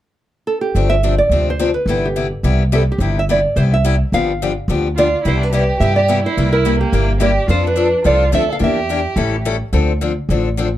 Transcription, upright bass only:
0.75 G1
1.29 D2
1.86 G1
2.43 C2
2.98 G1
3.56 C2
4.12 G1
4.68 D2
5.25 C2
5.80 G2
6.37 C2
6.93 G1
7.48 F2
8.05 C2
8.32 D2
8.61 E2
9.16 A1
9.73 D2
10.29 A1

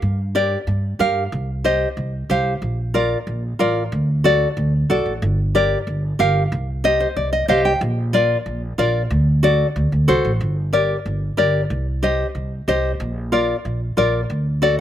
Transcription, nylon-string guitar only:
0.35 G4 A#4 D5
0.99 G4 A#4 F5
1.64 G4 C5 D#5
2.30 G4 C5 F5
2.94 F4 A#4 D5
3.59 F4 A#4 D5
4.24 F#4 A4 D5
4.90 F#4 A4 D5
5.55 G4 A#4 D5
6.19 G4 A#4 F5
6.84 G4 C5 D#5
7.00 C5
7.17 D5
7.33 D#5
7.48 G4 C5 D#5 F5
7.65 G5
8.13 F4 A#4 D5
8.78 F4 A#4 D5
9.43 F#4 A4 D5
10.08 F#4 A4 C5
10.73 G4 A#4 D5
11.37 G4 A#4 D5
12.03 G4 C5 D#5
12.68 G4 C5 D#5
13.32 F4 A#4 D5
13.97 F4 A#4 D5
14.62 F#4 A4 D5

